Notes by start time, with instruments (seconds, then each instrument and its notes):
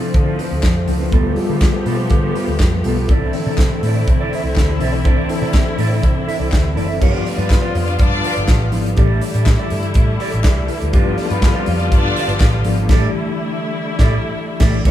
Already playing: picked electric bass C3, string section D3 F3 A3 C4, tine electric piano F3 C4 D4 E4 A4
0.00 clean electric guitar C4 F4 A4
0.13 picked electric bass D3, muted clean electric guitar stroke, kick, closed hi-hat
0.24 clean electric guitar C4 F4 A4
0.37 clean electric guitar C4 F4 B4, open hi-hat
0.49 picked electric bass D2, muted clean electric guitar stroke
0.63 picked electric bass F2, kick, snare, clap, closed hi-hat
0.76 muted clean electric guitar stroke
0.88 picked electric bass C#2, tine electric piano F3 C4 D4 A4, clean electric guitar C4 F4 A4, open hi-hat
1.00 clean electric guitar C4 F4 B4
1.11 picked electric bass D2, string section F3 B3 G4, tine electric piano G3 B3 F4 A4, clean electric guitar B3 F4 A4, kick, closed hi-hat
1.36 tine electric piano G3 B3 F4 G#4, muted clean electric guitar stroke, open hi-hat
1.43 tine electric piano A4
1.49 picked electric bass D3, clean electric guitar B3 F4 A4
1.61 muted clean electric guitar stroke, kick, snare, clap, closed hi-hat
1.86 picked electric bass B2, clean electric guitar B3 F4 A4, open hi-hat
1.99 clean electric guitar B3 F4 A4
2.10 picked electric bass D3, muted clean electric guitar stroke, kick, closed hi-hat
2.23 clean electric guitar B3 F4 A4
2.35 clean electric guitar B3 F4 B4, open hi-hat
2.48 picked electric bass D2, muted clean electric guitar stroke
2.60 picked electric bass F2, muted clean electric guitar stroke, kick, snare, clap, closed hi-hat
2.73 muted clean electric guitar stroke
2.84 picked electric bass B1, tine electric piano G3 B3 F4 A4, clean electric guitar B3 F4 A4, open hi-hat
2.98 clean electric guitar B3 F4 B4
3.09 picked electric bass C2, string section D3 C4 E4, tine electric piano E3 C4 D4 A4, clean electric guitar E4 A4 D5, kick, closed hi-hat
3.33 tine electric piano D3 C4 D4 A4, muted clean electric guitar stroke, open hi-hat
3.39 tine electric piano E3
3.46 picked electric bass C3, clean electric guitar E4 A4 D5
3.58 muted clean electric guitar stroke, kick, snare, clap, closed hi-hat
3.72 muted clean electric guitar stroke
3.83 picked electric bass A2, clean electric guitar E4 A4, open hi-hat
3.87 clean electric guitar D5
3.97 clean electric guitar E4 A4 D5
4.07 picked electric bass C3, muted clean electric guitar stroke, kick, closed hi-hat
4.20 clean electric guitar E4 A4 D5
4.33 clean electric guitar E4 A4 E5, open hi-hat
4.44 picked electric bass C2, muted clean electric guitar stroke
4.56 picked electric bass D2, muted clean electric guitar stroke, kick, snare, clap, closed hi-hat
4.70 muted clean electric guitar stroke
4.79 picked electric bass B1, tine electric piano E3 C4 D4 A4, clean electric guitar E4 A4 D5, open hi-hat
4.94 muted clean electric guitar stroke
5.04 picked electric bass C2, tine electric piano E3 C4 D4 A4, clean electric guitar E4 A4 D5, kick, closed hi-hat
5.29 tine electric piano E3 C4 D4 A4, muted clean electric guitar stroke, open hi-hat
5.42 picked electric bass C3, clean electric guitar E4 A4 D5
5.53 muted clean electric guitar stroke, kick, snare, clap, closed hi-hat
5.67 muted clean electric guitar stroke
5.78 picked electric bass A2, clean electric guitar E4 A4 D5, open hi-hat
5.91 clean electric guitar E4 A4 D5
6.03 picked electric bass C3, muted clean electric guitar stroke, kick, closed hi-hat
6.15 muted clean electric guitar stroke
6.27 clean electric guitar E4 A4 E5, open hi-hat
6.39 picked electric bass C2, clean electric guitar E4 A4 D5
6.51 picked electric bass D2, muted clean electric guitar stroke, kick, snare, clap, closed hi-hat
6.63 muted clean electric guitar stroke
6.75 picked electric bass F#1, tine electric piano E3 C4 D4 A4, clean electric guitar E4 A4 D5, open hi-hat
6.88 clean electric guitar E4 A4 E5
7.01 picked electric bass G1, string section D3 G3 B3 F4, tine electric piano F3 B3 D4 G4, clean electric guitar F4 B4 D5, kick, crash
7.25 string section A3 A4, muted clean electric guitar stroke, open hi-hat
7.37 picked electric bass G2, string section B3 B4, clean electric guitar F4 B4 D5, closed hi-hat
7.50 kick, snare, clap, closed hi-hat
7.62 string section C4 C5, clean electric guitar F4 B4 D5
7.75 picked electric bass F2, muted clean electric guitar stroke, open hi-hat
7.86 string section D4 D5, muted clean electric guitar stroke, closed hi-hat
7.99 picked electric bass G2, string section D4 D5, kick, closed hi-hat
8.12 muted clean electric guitar stroke
8.24 clean electric guitar F4 B4 D5, open hi-hat
8.36 picked electric bass G1, muted clean electric guitar stroke, closed hi-hat
8.48 picked electric bass A1, kick, snare, clap, closed hi-hat
8.63 muted clean electric guitar stroke
8.71 picked electric bass G#1, tine electric piano F3 B3 D4 E4, open hi-hat
8.86 muted clean electric guitar stroke, closed hi-hat
8.97 picked electric bass A1, tine electric piano E3 A3 D4 G4, string section A3 E4, clean electric guitar G4 A4 D5, kick, closed hi-hat
9.21 muted clean electric guitar stroke, open hi-hat
9.34 picked electric bass A2, clean electric guitar G4 A4 D5, closed hi-hat
9.45 muted clean electric guitar stroke, kick, snare, clap, closed hi-hat
9.59 clean electric guitar G4 A4 D5
9.70 picked electric bass G2, muted clean electric guitar stroke, open hi-hat
9.83 muted clean electric guitar stroke, closed hi-hat
9.94 picked electric bass A2, kick, closed hi-hat
10.07 muted clean electric guitar stroke
10.20 clean electric guitar G4 A4 D5, tine electric piano E5, open hi-hat
10.32 picked electric bass A1, muted clean electric guitar stroke, closed hi-hat
10.44 tine electric piano E4 B4 D5, muted clean electric guitar stroke, kick, snare, clap, closed hi-hat
10.57 picked electric bass C2, muted clean electric guitar stroke
10.68 tine electric piano E4 A4 B4, open hi-hat
10.81 picked electric bass D2, muted clean electric guitar stroke, closed hi-hat
10.93 picked electric bass G1, tine electric piano F3 A3 D4 G4, string section B3 F4, clean electric guitar F4 B4 D5, kick, closed hi-hat
11.00 tine electric piano B3
11.18 string section A3 A4, muted clean electric guitar stroke, open hi-hat
11.29 picked electric bass G2, string section B3 B4, clean electric guitar F4 B4 D5, closed hi-hat
11.42 muted clean electric guitar stroke, kick, snare, clap, closed hi-hat
11.53 string section C4 C5, clean electric guitar F4 B4 D5
11.66 picked electric bass F2, muted clean electric guitar stroke, open hi-hat
11.78 string section D4 D5, muted clean electric guitar stroke, closed hi-hat
11.91 picked electric bass G2, string section D4 D5, kick, closed hi-hat
12.05 muted clean electric guitar stroke
12.16 clean electric guitar F4 B4 D5, open hi-hat
12.28 picked electric bass G1, muted clean electric guitar stroke, closed hi-hat
12.40 picked electric bass A1, muted clean electric guitar stroke, kick, snare, clap, closed hi-hat
12.56 muted clean electric guitar stroke
12.64 picked electric bass G#1, tine electric piano F3 B3 D4 A4, open hi-hat
12.77 muted clean electric guitar stroke, closed hi-hat
12.88 picked electric bass A1, tine electric piano E3 A3 D4, string section A3 E4, clean electric guitar G4, kick, snare, crash
12.92 tine electric piano G4, clean electric guitar A4 D5
13.99 picked electric bass A1, clean electric guitar G4 A4 D5, kick, snare
14.60 picked electric bass A1, tine electric piano E3 A3 D4 A4, clean electric guitar G4 A4 D5, kick, snare, crash
14.85 picked electric bass C2, string section C3 E3 D4 E4 B4 E5, tine electric piano G3 C4 D4 E4 B4, clean electric guitar E4 B4 D5, kick, crash